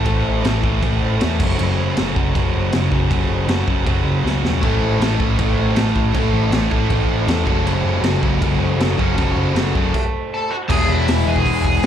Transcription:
0.05 picked electric bass A1, overdriven electric guitar A2 E3 A3, kick, crash
0.26 picked electric bass A1
0.44 picked electric bass A1, overdriven electric guitar A2 E3 A3, snare, crash
0.64 picked electric bass A1, overdriven electric guitar A2 E3 A3, kick
0.82 picked electric bass A1, overdriven electric guitar A2 E3 A3, kick, crash
1.02 picked electric bass A1
1.20 picked electric bass E2, overdriven electric guitar A2 E3, distorted electric guitar A3, snare, crash
1.24 overdriven electric guitar A3
1.40 picked electric bass F#1, overdriven electric guitar F#2 C#3 F#3, kick, crash
1.59 picked electric bass F#1, overdriven electric guitar F#2 C#3 F#3, crash
1.79 picked electric bass F#1
1.95 overdriven electric guitar F#2 C#3 F#3, snare, crash
2.00 picked electric bass F#1
2.15 picked electric bass F#1, overdriven electric guitar F#2 C#3 F#3, kick
2.34 picked electric bass F#1, overdriven electric guitar F#2 C#3 F#3, kick, crash
2.56 picked electric bass F#1
2.72 picked electric bass F#1, overdriven electric guitar F#2 C#3 F#3, snare, crash
2.91 picked electric bass F#1, overdriven electric guitar F#2 C#3 F#3, kick
3.08 picked electric bass F#1, overdriven electric guitar F#2 C#3 F#3, kick, crash
3.30 picked electric bass F#1
3.47 picked electric bass F#1, overdriven electric guitar F#2 C#3 F#3, snare, crash
3.67 picked electric bass F#1, overdriven electric guitar F#2 C#3 F#3, kick
3.86 picked electric bass F#1, overdriven electric guitar F#2 C#3 F#3, kick, crash
4.05 picked electric bass F#1
4.24 picked electric bass C#2, overdriven electric guitar F#2 C#3 F#3, snare
4.42 picked electric bass E1, overdriven electric guitar F#2 C#3 F#3, snare
4.61 picked electric bass A1, overdriven electric guitar A2 E3 A3 C#4 E4 A4, kick, crash
4.82 picked electric bass A1
4.99 picked electric bass A1, overdriven electric guitar A2 E3 A3, snare, crash
5.18 picked electric bass A1, overdriven electric guitar A2 E3 A3, kick
5.38 picked electric bass A1, overdriven electric guitar A2 E3 A3, kick, crash
5.58 picked electric bass A1
5.76 picked electric bass A1, overdriven electric guitar A2 E3 A3, snare, crash
5.95 picked electric bass A1, overdriven electric guitar A2 E3 A3, kick
6.13 picked electric bass A1, overdriven electric guitar A2 E3 A3 C#4 E4 A4, kick, crash
6.33 picked electric bass A1
6.51 picked electric bass A1, overdriven electric guitar A2 E3 A3, snare, crash
6.70 picked electric bass A1, overdriven electric guitar A2 E3 A3, kick
6.89 picked electric bass A1, overdriven electric guitar A2 E3 A3, kick, crash
7.08 picked electric bass A1
7.26 picked electric bass E2, overdriven electric guitar A2 E3 A3, snare, crash
7.44 picked electric bass F#1, overdriven electric guitar F#2 C#3 F#3 C#4 F#4, kick
7.48 overdriven electric guitar A4
7.62 picked electric bass F#1, overdriven electric guitar F#2 C#3 F#3
7.67 crash
7.84 picked electric bass F#1
8.02 picked electric bass F#1, overdriven electric guitar F#2 C#3 F#3, snare, crash
8.21 picked electric bass F#1, overdriven electric guitar F#2 C#3 F#3, kick
8.39 picked electric bass F#1, overdriven electric guitar F#2 C#3 F#3, kick, crash
8.59 picked electric bass F#1
8.77 picked electric bass F#1, overdriven electric guitar F#2 C#3 F#3, crash
8.81 snare
8.96 picked electric bass F#1, overdriven electric guitar F#2 C#3 F#3 C#4, kick
9.00 overdriven electric guitar F#4 A4
9.14 overdriven electric guitar F#2 C#3 F#3, kick, crash
9.19 picked electric bass F#1
9.36 picked electric bass F#1
9.54 picked electric bass F#1, overdriven electric guitar F#2 C#3 F#3, snare, crash
9.75 picked electric bass F#1, overdriven electric guitar F#2 C#3 F#3, kick
9.94 kick, crash
10.34 overdriven electric guitar A4 A5
10.50 overdriven electric guitar F#4 F#5
10.68 picked electric bass E1, overdriven electric guitar E2 B2 E3 G#3 B3 G#4 G#5, kick, crash
10.72 overdriven electric guitar E3 E4
10.89 picked electric bass E1, overdriven electric guitar E4 E5
11.08 picked electric bass E1, snare, open hi-hat
11.25 picked electric bass E1, overdriven electric guitar E2 B2 E3 G#5
11.29 overdriven electric guitar G#4
11.36 kick
11.46 picked electric bass E1, kick, open hi-hat
11.65 kick
11.83 open hi-hat

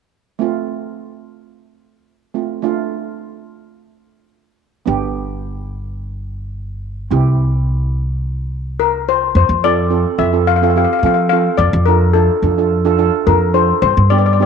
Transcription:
0.39 steel pan A3 C4 F4
2.34 steel pan A3 C4 F4
2.62 steel pan A3 D4 F4
4.86 upright bass G1, steel pan B3 D4 G4
7.11 upright bass C2, steel pan C4 E4 G4
8.80 steel pan A#4
9.09 steel pan C5
9.35 upright bass F2, steel pan C5
9.49 upright bass F2
9.64 steel pan C4 F4 A4 D5
9.90 steel pan C4 F4 A4
10.18 upright bass F2, steel pan C4 F4 A4 E5
10.33 steel pan C4 F4 A4
10.47 steel pan F5
10.56 steel pan F5
10.62 steel pan C4 F4 A4 F5
10.70 steel pan F5
10.76 steel pan C4 F4 G4 F5
10.84 steel pan F5
10.93 steel pan F5
10.99 upright bass F3, steel pan F5
11.04 steel pan C4 F4 A4 F5
11.14 steel pan F5
11.29 steel pan C4 F4 A4 F5
11.58 upright bass F2, steel pan D5
11.73 upright bass F2
11.86 steel pan D4 F4 A4 A#4
12.13 steel pan D4 F4 A4
12.42 upright bass F2, steel pan D4 F4 A4
12.58 steel pan D4 F4 A4
12.85 steel pan D4 F4 A4
12.98 steel pan D4 F4 A4
13.27 upright bass F2, steel pan D4 F4 A4 A#4
13.54 steel pan D4 F4 A4 C5
13.82 upright bass G2, steel pan C5
13.97 upright bass G2
14.10 steel pan B3 D4 G4 D5
14.18 steel pan D5
14.26 steel pan D5
14.33 steel pan D5
14.40 steel pan B3 D4 G4 D5

